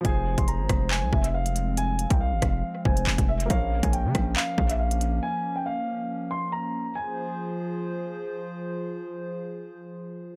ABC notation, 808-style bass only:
X:1
M:4/4
L:1/16
Q:1/4=139
K:Fm
V:1 name="808-style bass" clef=bass
F,,,3 F,,,2 A,,, F,,,3 C,, F,,,6- | F,,,3 C,,2 A,,, F,,,2 z2 F,,,2 F,,, F,,,3 | B,,,3 B,,,2 D, B,,,2 z2 B,,,6 | z16 |
z16 | z16 |]